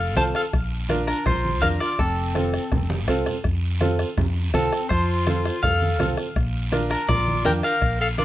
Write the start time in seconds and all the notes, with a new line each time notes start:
Already playing: F1 A4 F5
0.16 C2 C4 F4 A4 C5 A5, bombo low, bombo rim, high conga, short guiro
0.35 A4 F5, bombo rim, short guiro
0.53 A#1, bombo low, bombo rim, long guiro
0.89 D4 F4 A#4, bombo rim, high conga, short guiro
1.07 D4 A#4, bombo rim, short guiro
1.26 A#1 F4 C5, bombo low, bombo rim, low conga, long guiro
1.45 high conga
1.61 F2 D4 F4 A#4 F5, bombo low, bombo rim, high conga, short guiro
1.80 F4 D5, bombo rim, short guiro
1.99 F1 C4 A4, bombo low, bombo rim, long guiro
2.35 C4 F4 A4, bombo rim, high conga, short guiro
2.54 bombo rim, short guiro
2.72 F1, bombo low, bombo rim, low conga, long guiro
2.90 high conga
3.08 C2 C4 F4 A4, bombo low, bombo rim, short guiro
3.26 bombo rim, low conga, short guiro
3.44 F2, bombo low, bombo rim, long guiro
3.81 C4 F4 A4, bombo rim, high conga, short guiro
3.99 bombo rim, short guiro
4.17 F2, bombo low, bombo rim, low conga, long guiro
4.54 C2 C4 F4 A4, bombo low, bombo rim, high conga, short guiro
4.72 bombo rim, short guiro
4.89 F2 F4 C5, bombo low, bombo rim, long guiro
5.27 C4 F4 A4, bombo rim, high conga, short guiro
5.45 bombo rim, short guiro
5.63 F2 A4 F5, bombo low, bombo rim, low conga, long guiro
5.82 high conga
5.99 C2 C4 F4 A4, bombo rim, high conga, low conga, short guiro
6.17 bombo rim, short guiro
6.36 A#1, bombo low, bombo rim, long guiro
6.72 D4 F4 A#4, bombo rim, high conga, short guiro
6.90 D4 A#4, bombo rim, short guiro
7.08 A#1 F4 D5, bombo low, bombo rim, low conga, long guiro
7.28 high conga
7.45 F2 D4 F4 A#4 G5, bombo rim, high conga, short guiro
7.63 A#4 F5, bombo rim, short guiro
7.82 A#1, bombo low, bombo rim, long guiro
8.01 A4 F5
8.18 D4 F4 A#4 D5, bombo rim, high conga, short guiro